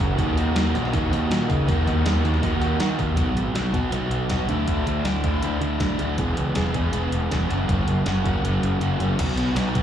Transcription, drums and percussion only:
0.00 open hi-hat
0.18 kick, open hi-hat
0.38 open hi-hat
0.56 snare, open hi-hat
0.75 open hi-hat
0.85 snare
0.94 kick, open hi-hat
1.13 open hi-hat
1.31 snare, open hi-hat
1.50 kick, open hi-hat
1.68 kick, open hi-hat
1.87 open hi-hat
2.06 snare, open hi-hat
2.25 open hi-hat
2.34 snare
2.43 kick, open hi-hat
2.62 open hi-hat
2.80 snare, open hi-hat
2.99 kick, open hi-hat
3.17 kick, closed hi-hat
3.37 closed hi-hat
3.55 snare, closed hi-hat
3.74 kick, closed hi-hat
3.92 closed hi-hat
4.11 closed hi-hat
4.30 kick, snare, closed hi-hat
4.49 closed hi-hat
4.68 kick, closed hi-hat
4.87 closed hi-hat
5.05 snare, closed hi-hat
5.24 kick, closed hi-hat
5.42 closed hi-hat
5.61 closed hi-hat
5.80 kick, snare, closed hi-hat
5.99 closed hi-hat
6.18 kick, closed hi-hat
6.37 closed hi-hat
6.55 snare, closed hi-hat
6.74 kick, closed hi-hat
6.93 closed hi-hat
7.12 closed hi-hat
7.31 kick, snare, closed hi-hat
7.50 snare, closed hi-hat
7.69 kick, closed hi-hat
7.88 closed hi-hat
8.06 snare, closed hi-hat
8.25 kick, closed hi-hat
8.45 closed hi-hat
8.63 closed hi-hat
8.81 closed hi-hat
9.00 closed hi-hat
9.19 kick, closed hi-hat, crash
9.37 closed hi-hat
9.56 snare, closed hi-hat
9.75 kick, closed hi-hat

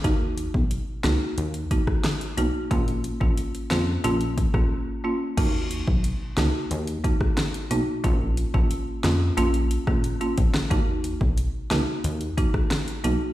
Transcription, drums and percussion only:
0.04 kick, closed hi-hat
0.38 closed hi-hat
0.54 kick
0.71 closed hi-hat
1.04 cross-stick, snare, closed hi-hat
1.38 closed hi-hat
1.54 closed hi-hat
1.71 kick, closed hi-hat
1.87 kick, cross-stick
2.04 cross-stick, snare, closed hi-hat
2.21 closed hi-hat
2.38 closed hi-hat
2.71 kick, closed hi-hat
2.88 closed hi-hat
3.04 closed hi-hat
3.21 kick
3.37 closed hi-hat
3.55 closed hi-hat
3.71 cross-stick, snare, closed hi-hat
4.04 closed hi-hat
4.21 closed hi-hat
4.38 kick, closed hi-hat
4.54 kick, cross-stick
5.38 kick, closed hi-hat, crash
5.71 closed hi-hat
5.88 kick
6.04 closed hi-hat
6.37 cross-stick, snare, closed hi-hat
6.71 closed hi-hat
6.87 closed hi-hat
7.04 kick, closed hi-hat
7.21 kick, cross-stick
7.37 cross-stick, snare, closed hi-hat
7.54 closed hi-hat
7.71 closed hi-hat
8.04 kick, closed hi-hat
8.37 closed hi-hat
8.54 kick
8.71 closed hi-hat
9.04 cross-stick, snare, closed hi-hat
9.38 closed hi-hat
9.54 closed hi-hat
9.71 closed hi-hat
9.87 kick, cross-stick
10.04 closed hi-hat
10.21 closed hi-hat
10.38 kick, closed hi-hat
10.54 cross-stick, snare
10.71 kick, closed hi-hat
11.04 closed hi-hat
11.21 kick
11.37 closed hi-hat
11.71 cross-stick, snare, closed hi-hat
12.04 closed hi-hat
12.21 closed hi-hat
12.38 kick, closed hi-hat
12.54 kick, cross-stick
12.71 cross-stick, snare, closed hi-hat
12.88 closed hi-hat
13.04 closed hi-hat

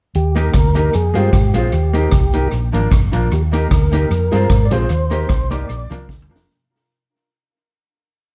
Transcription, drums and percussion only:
0.14 closed hi-hat
0.36 closed hi-hat
0.54 kick, cross-stick, closed hi-hat
0.75 closed hi-hat
0.94 closed hi-hat
1.15 closed hi-hat
1.33 kick, cross-stick, closed hi-hat
1.54 closed hi-hat
1.72 closed hi-hat
1.94 closed hi-hat
2.11 kick, cross-stick, closed hi-hat
2.33 closed hi-hat
2.52 closed hi-hat
2.74 closed hi-hat
2.92 kick, cross-stick, closed hi-hat
3.13 closed hi-hat
3.31 closed hi-hat
3.53 closed hi-hat
3.71 kick, cross-stick, closed hi-hat
3.92 closed hi-hat
4.11 closed hi-hat
4.32 closed hi-hat
4.50 kick, cross-stick, closed hi-hat
4.71 closed hi-hat
4.89 closed hi-hat
5.11 closed hi-hat
5.29 kick, cross-stick, closed hi-hat
5.51 closed hi-hat
5.70 closed hi-hat
5.91 closed hi-hat
6.09 kick, snare
6.22 mid tom
6.36 snare

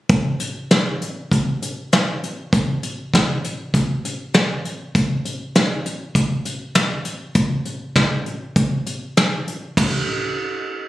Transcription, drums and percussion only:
0.09 kick, closed hi-hat
0.40 closed hi-hat
0.71 snare, closed hi-hat
1.02 closed hi-hat
1.32 kick, closed hi-hat
1.62 closed hi-hat
1.93 snare, closed hi-hat
2.23 closed hi-hat
2.53 kick, closed hi-hat
2.83 closed hi-hat
3.14 kick, snare, closed hi-hat
3.44 closed hi-hat
3.74 kick, closed hi-hat
4.05 closed hi-hat
4.34 snare, closed hi-hat
4.65 closed hi-hat
4.95 kick, closed hi-hat
5.25 closed hi-hat
5.55 snare, closed hi-hat
5.86 closed hi-hat
6.15 kick, closed hi-hat
6.45 closed hi-hat
6.75 snare, closed hi-hat
7.05 closed hi-hat
7.35 kick, closed hi-hat
7.65 closed hi-hat
7.95 kick, snare, closed hi-hat
8.26 closed hi-hat
8.56 kick, closed hi-hat
8.86 closed hi-hat
9.17 snare, closed hi-hat
9.47 closed hi-hat
9.77 kick, floor tom, crash

